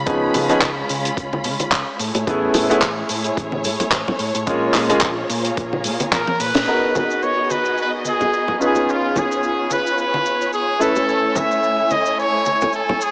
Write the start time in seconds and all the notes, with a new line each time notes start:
Already playing: G#3 C#4 F4 B5
0.06 C#2 F3 B3 C#4 D#4 G#4, kick, closed hi-hat, maracas
0.34 C#3, open hi-hat, low conga, maracas
0.49 F3 B3 C#4 D#4 G#4, muted picked electric bass stroke, closed hi-hat, high conga, maracas
0.62 C#2, kick, clap, closed hi-hat, maracas
0.89 C#3, open hi-hat, maracas
1.05 closed hi-hat, maracas
1.17 C#2, kick, closed hi-hat, maracas
1.33 high conga
1.44 C#3, open hi-hat, maracas
1.60 closed hi-hat, high conga, maracas
1.72 C#2, kick, clap, closed hi-hat, maracas
1.98 A2 A3 E4 G#4 C#5, open hi-hat, maracas
2.15 A2, closed hi-hat, high bongo, maracas
2.27 A1 A3 B3 C#4 E4 G#4, kick, closed hi-hat, maracas
2.54 A2, open hi-hat, high bongo, low conga, maracas
2.69 A3 B3 C#4 E4 G#4, muted picked electric bass stroke, closed hi-hat, maracas
2.82 A1, kick, clap, closed hi-hat, maracas
3.09 A2, open hi-hat, maracas
3.24 closed hi-hat, maracas
3.37 A1, kick, closed hi-hat, maracas
3.52 high conga
3.64 A2, open hi-hat, maracas
3.80 closed hi-hat, low conga, maracas
3.92 A1, kick, clap, closed hi-hat, maracas
4.08 low conga
4.19 A2, open hi-hat, maracas
4.35 A2, closed hi-hat, maracas
4.47 G#3 A#3 C#4 F4 G#4, kick, closed hi-hat, maracas
4.74 A#2, clap, open hi-hat, high bongo, low conga, maracas
4.89 G#3 A#3 C#4 F4 G#4, muted picked electric bass stroke, closed hi-hat, high conga, maracas
5.01 A#1, kick, clap, closed hi-hat, maracas
5.30 A#2, open hi-hat, maracas
5.45 closed hi-hat, maracas
5.57 A#1, kick, closed hi-hat, maracas
5.73 high conga
5.84 A#2, open hi-hat, maracas
6.00 closed hi-hat, high conga, maracas
6.12 A#1 A#4, kick, clap, closed hi-hat, high tom, maracas
6.27 high tom
6.40 A#2 B4, open hi-hat, maracas
6.55 A#2, snare, closed hi-hat, high bongo, maracas
6.67 B3 D#4 F#4 G#4 A#4 D#5, maracas
6.95 B4, high conga, low conga, maracas
7.10 maracas
7.22 C#5, maracas
7.50 B4, high conga, maracas
7.65 maracas
7.78 B4, maracas
8.05 G#4, high conga, maracas
8.21 low conga, maracas
8.33 maracas
8.48 low conga
8.59 C#4 D#4 F4 G#4 B4 C#5, maracas
8.75 high bongo, maracas
8.89 F4, maracas
9.16 G#4, high conga, low conga, maracas
9.32 maracas
9.43 maracas
9.71 B4, high conga, maracas
9.86 maracas
9.98 B4, maracas
10.14 high conga
10.26 maracas
10.41 maracas
10.53 G#4, maracas
10.79 A3 C#4 E4 A4 B4 G#5, maracas
10.96 high bongo, maracas
11.09 maracas
11.35 E5, high conga, low conga, maracas
11.51 maracas
11.63 maracas
11.90 D#5, high conga, maracas
12.06 maracas
12.19 C#5, maracas
12.45 high conga, maracas
12.61 low conga, maracas
12.73 A4, maracas
12.89 low conga
13.01 G#4, maracas